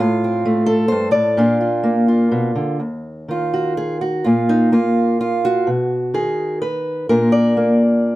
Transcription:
0.00 A2 F4
0.24 C4
0.45 A3
0.66 A4
0.88 G2 C5
1.12 A2 D5
1.37 A#2 D4 F4
1.61 F4
1.83 A#3
2.08 F4
2.31 B2
2.55 D3
2.80 D#2
3.28 D#3 F4
3.54 F#4
3.77 G#4
4.01 F#4
4.24 A#2 A#3 F4
4.49 D#4
4.72 A#3 F4
5.21 F4
5.45 F#4
5.67 B2
6.14 D#3 G#4
6.62 B4
7.09 A#2 A#3 D4 F4 A#4
7.32 D5
7.57 A#3

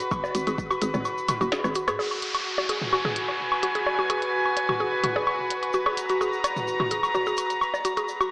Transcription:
Already playing: F#4 B4 B5
0.00 closed hi-hat, shaker
0.11 kick, low woodblock, shaker
0.24 high bongo, shaker
0.35 G#1 F#4, closed hi-hat, shaker
0.47 G#1 G#4, closed hi-hat, low woodblock, shaker
0.58 kick, shaker
0.71 F#4, low woodblock, shaker
0.82 G#1 G#4, closed hi-hat, shaker
0.94 G#1, mid tom, high bongo, shaker
1.05 low woodblock, shaker
1.18 shaker
1.28 closed hi-hat, mid tom, low woodblock, shaker
1.41 F#1 F#4, shaker
1.52 G#4, cross-stick, snare, high bongo, shaker
1.64 G#1, cross-stick, low woodblock, shaker
1.75 F#4, closed hi-hat, shaker
1.88 G#2 G#4, cross-stick, closed hi-hat, low woodblock, shaker
1.99 F#4 G#4, high bongo, downlifter
2.11 low woodblock
2.22 closed hi-hat
2.35 closed hi-hat, low woodblock
2.58 F#4, high bongo
2.69 G#4 G#5, closed hi-hat, low woodblock
2.73 B4
2.81 mid tom
2.93 F#4, low woodblock
3.05 G#4, mid tom
3.16 closed hi-hat
3.28 high bongo, low woodblock
3.52 low woodblock
3.63 F#4, closed hi-hat
3.75 G#4, closed hi-hat
3.86 high bongo, low woodblock
3.99 F#4
4.10 G#4, closed hi-hat, low woodblock
4.22 closed hi-hat
4.46 low woodblock
4.57 closed hi-hat, high bongo
4.69 F#4, mid tom, low woodblock
4.80 G#4
5.04 F#4, closed hi-hat, mid tom, low woodblock
5.16 G#4, high bongo
5.27 low woodblock
5.50 closed hi-hat
5.63 closed hi-hat, low woodblock
5.73 F#4, shaker
5.86 G#4, high bongo, low woodblock
5.95 A#5, closed hi-hat, shaker
6.09 F#4, closed hi-hat, shaker
6.21 G#4, low woodblock, shaker
6.33 shaker
6.44 closed hi-hat, high bongo, low woodblock, shaker
6.56 mid tom, shaker
6.67 shaker
6.80 F#4, mid tom, low woodblock
6.91 G#4, closed hi-hat, shaker
7.03 low woodblock, shaker
7.14 F#4, high bongo, shaker
7.26 G#4, shaker
7.37 closed hi-hat, low woodblock, shaker
7.50 closed hi-hat, shaker
7.61 low woodblock, shaker
7.74 high bongo, shaker
7.85 F#4, closed hi-hat, shaker
7.97 G#4, closed hi-hat, low woodblock, shaker
8.08 shaker
8.21 F#4, low woodblock, shaker

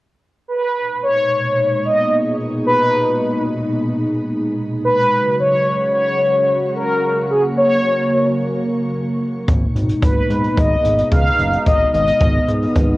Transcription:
0.48 B4
0.76 A#2 B2 G#3 D#4
1.03 C#5
1.85 D#5
2.66 B4
4.85 B4
5.12 C#3 F#3 F#4
5.39 C#5
5.94 C#5
6.75 A#4
7.30 A#3 G#4
7.57 C#5
9.48 G#1 A#2 B2 G#3 D#4, kick, closed hi-hat
9.75 G#1, closed hi-hat
9.89 closed hi-hat
10.03 G#1 B4, kick, closed hi-hat
10.30 G#2, closed hi-hat
10.44 closed hi-hat
10.57 G#1 D#5, kick, closed hi-hat
10.84 G#1, closed hi-hat
10.98 closed hi-hat
11.12 C#2 F5, kick, closed hi-hat
11.39 F#1, closed hi-hat
11.53 closed hi-hat
11.66 G#1 B3 D#5, kick, closed hi-hat
11.94 G#1 D#5, closed hi-hat
12.07 closed hi-hat
12.21 G#1, kick, closed hi-hat
12.48 G#2, closed hi-hat
12.62 closed hi-hat
12.75 G#1, kick, closed hi-hat

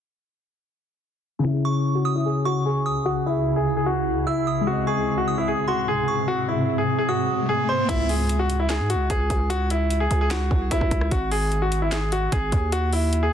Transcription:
1.39 C#3 C#4
1.45 C#2 C#3 E4 G#4
1.51 G#4
1.65 G#4 C#6
1.95 F#4
2.05 D#6
2.15 E4
2.25 G#4
2.45 F#4 C#6
2.66 G#4
2.86 D#6
3.05 F#4
3.26 E4
3.56 G#4
3.77 G#4
3.86 F#4
4.27 E4 E6
4.47 D#6
4.61 G#3 G#4
4.67 G#2 C3 C4 F#4
4.73 D#5
4.87 G#4 C#6
5.18 F#4
5.28 D#6
5.38 E4
5.48 G#4
5.68 F#4 C6
5.88 G#4
6.08 C#6
6.28 F#4, riser
6.48 E4
6.78 G#4
6.98 G#4
7.09 F#4 D#6
7.49 G#4
7.69 C5 C6
7.89 C#2 E4, kick, closed hi-hat, crash
8.09 G#4, open hi-hat
8.29 closed hi-hat
8.39 F#4
8.50 closed hi-hat
8.59 E4
8.70 G#4, snare, clap, closed hi-hat
8.80 G#2
8.90 F#4, closed hi-hat
8.95 C#2
9.10 C#2 G#4, kick, closed hi-hat
9.30 C#2, kick, closed hi-hat
9.50 F#4, closed hi-hat
9.70 E4, closed hi-hat
9.90 closed hi-hat
10.00 G#4
10.11 C#2, closed hi-hat
10.21 G#4
10.31 F#4, snare, clap, closed hi-hat
10.51 C2, kick
10.71 C#2 E4, kick, closed hi-hat
10.81 C#2, kick
10.91 C#2, kick, closed hi-hat
11.01 cross-stick
11.11 G#1 F#4, kick, closed hi-hat
11.31 G#4, open hi-hat
11.52 closed hi-hat
11.62 F#4
11.72 closed hi-hat
11.82 E4
11.92 G#4, snare, clap, closed hi-hat
12.12 F#4, closed hi-hat
12.32 G#1 G#4, kick, closed hi-hat
12.52 D#2, kick, closed hi-hat
12.72 F#4, closed hi-hat
12.93 E4, open hi-hat
13.13 closed hi-hat
13.23 G#4

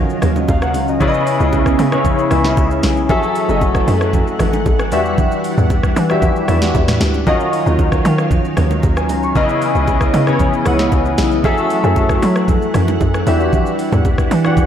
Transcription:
Already playing: C#3 D#3 F#3 C#4 F4 F#4 D#5 F5
0.10 shaker
0.22 D#2, cross-stick, open hi-hat, low conga, shaker
0.36 D#5, low bongo, shaker
0.48 D#2 F5, kick, high bongo, shaker
0.62 F#5, cross-stick, shaker
0.74 C#2, open hi-hat, high bongo, low bongo, shaker
0.88 D#5, shaker
1.00 C#3 B3 C#4 E4 B4 D5, kick, low conga, shaker
1.08 D#5
1.14 shaker
1.27 open hi-hat, shaker
1.40 C#2, shaker
1.53 kick, high bongo, shaker
1.66 kick, cross-stick, shaker
1.79 C#3, open hi-hat, low bongo, shaker
1.92 C#3 C#4 E4 B4 C#5, cross-stick, shaker
2.05 kick, low conga, shaker
2.18 shaker
2.31 C#2 C#3 C#4 E4 B4 E5, cross-stick, open hi-hat, low conga, shaker
2.45 snare, low bongo, shaker
2.57 C#2, kick, high bongo, shaker
2.71 shaker
2.83 B1, snare, open hi-hat, high bongo, low bongo, shaker
2.97 shaker
3.09 E3 F#3 A3 C#4 G#4 A4 E5 F#5, kick, low conga, shaker
3.23 shaker
3.35 open hi-hat, shaker
3.49 F#1 F#3 C#4 G#4 A4 D#5, shaker
3.61 kick, high bongo, shaker
3.75 kick, cross-stick, shaker
3.88 F#2, open hi-hat, low bongo, shaker
4.01 cross-stick, shaker
4.13 kick, low conga, shaker
4.27 shaker
4.39 A1, cross-stick, open hi-hat, low conga, shaker
4.53 low bongo, shaker
4.66 A1, kick, high bongo, shaker
4.79 cross-stick, shaker
4.92 E2 E3 G3 D4 F#4 G4 E5, open hi-hat, high bongo, low bongo, shaker
5.05 shaker
5.18 kick, low conga, shaker
5.31 shaker
5.44 open hi-hat, shaker
5.58 E2, mid tom, shaker
5.70 kick, high bongo, shaker
5.83 kick, cross-stick, shaker
5.96 E3, open hi-hat, low bongo, shaker
6.10 E3 D4 F#4 G4 E5, cross-stick, shaker
6.22 kick, low conga, shaker
6.36 shaker
6.48 E2 E3 D4 F#4 G4 E5, cross-stick, open hi-hat, low conga, shaker
6.62 snare, low bongo, shaker
6.75 E2, kick, high bongo, shaker
6.88 cross-stick, snare, mid tom, shaker
7.01 D2, snare, open hi-hat, high bongo, low bongo, shaker
7.14 high bongo, shaker
7.27 D#3 F#3 C#4 F4 F#4 D#5 F5, kick, low conga, shaker
7.40 shaker
7.53 open hi-hat, shaker
7.66 D#2 D#3 C#4 F4 F#4 D#5, shaker
7.79 kick, high bongo, shaker
7.92 kick, cross-stick, shaker
8.05 D#3, open hi-hat, low bongo, shaker
8.18 cross-stick, shaker
8.31 kick, low conga, shaker
8.45 shaker
8.57 D#2, cross-stick, open hi-hat, low conga, shaker
8.71 low bongo, shaker
8.83 D#2, kick, high bongo, shaker
8.97 G#5, cross-stick, shaker
9.09 C#2 A#5, open hi-hat, high bongo, low bongo, shaker
9.23 C#6, shaker
9.35 C#3 E3 B3 C#4 D#4 B4 D#5, kick, low conga, shaker
9.42 E4
9.49 shaker
9.62 open hi-hat, shaker
9.75 C#2, shaker
9.87 kick, high bongo, shaker
10.01 kick, cross-stick, shaker
10.14 C#3, open hi-hat, low bongo, shaker
10.27 C#3 C#4 E4 B4 C#5, cross-stick, shaker
10.39 kick, low conga, shaker
10.53 shaker
10.65 C#2 C#3 C#4 E4 B4 F#5, cross-stick, open hi-hat, low conga, shaker
10.79 snare, low bongo, shaker
10.92 C#2, kick, high bongo, shaker
11.05 shaker
11.18 B1, snare, open hi-hat, high bongo, low bongo, shaker
11.31 shaker
11.44 F#3 A3 C#4 G#4 A4 E5 F#5, kick, low conga, shaker
11.57 shaker
11.70 open hi-hat, shaker
11.84 F#2 F#3 C#4 G#4 A4 E5, shaker
11.96 kick, high bongo, shaker
12.09 kick, cross-stick, shaker
12.22 F#3, open hi-hat, low bongo, shaker
12.36 cross-stick, shaker
12.48 kick, low conga, shaker
12.62 shaker
12.74 F#2, cross-stick, open hi-hat, low conga, shaker
12.88 low bongo, shaker
13.01 F#2, kick, high bongo, shaker
13.14 cross-stick, shaker
13.27 E2 E3 G3 D4 F#4 G4 E5, open hi-hat, high bongo, low bongo, shaker
13.40 shaker
13.53 kick, low conga, shaker
13.66 shaker
13.79 open hi-hat, shaker
13.92 E2, mid tom, low bongo, shaker
14.05 kick, high bongo, shaker
14.18 kick, cross-stick, shaker
14.31 E3, open hi-hat, low bongo, shaker
14.45 E3 D4 F#4 G4 F#5, cross-stick, shaker
14.57 kick, low conga, shaker

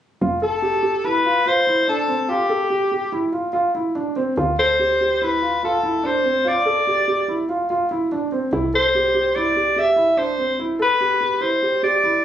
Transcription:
0.21 F1 F4
0.42 A4
0.62 G4
0.83 G4
1.04 E4 B4
1.25 F4
1.46 F4 C5
1.67 E4
1.88 D4 A4
2.08 C4
2.28 F4 G4
2.49 A4
2.70 G4
2.91 G4
3.12 E4
3.32 F4
3.53 F4
3.75 E4
3.95 D4
4.16 C4
4.37 D2 F4
4.59 A4 C5
4.79 G4
5.01 G4
5.22 E4 B4
5.42 F4
5.63 F4 A4
5.83 E4
6.03 D4 C5
6.24 C4
6.45 F4 D5
6.66 A4
6.87 G4
7.08 G4
7.28 E4
7.49 F4
7.70 F4
7.91 E4
8.12 D4
8.32 C4
8.53 C2 E4
8.74 A4 C5
8.95 G4
9.14 G4
9.35 E4 D5
9.56 G4
9.76 G4 E5
9.96 E4
10.17 D4 C5
10.38 C4
10.59 E4
10.79 A4 B4
11.00 G4
11.41 E4 C5
11.62 G4
11.83 G4 D5
12.04 E4

